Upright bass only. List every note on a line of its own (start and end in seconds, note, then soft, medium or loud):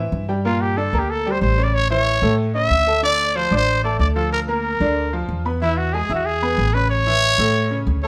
0.12 0.87 G2 medium
0.93 1.38 D2 medium
1.41 2.17 A1 medium
2.22 2.67 A2 medium
2.70 3.46 D2 medium
3.51 3.96 A1 medium
3.99 4.75 D2 medium
4.80 5.25 D2 medium
5.29 6.04 E2 medium
6.10 6.55 E2 medium
6.58 7.33 A1 loud
7.38 7.83 A2 medium
7.87 8.07 D2 loud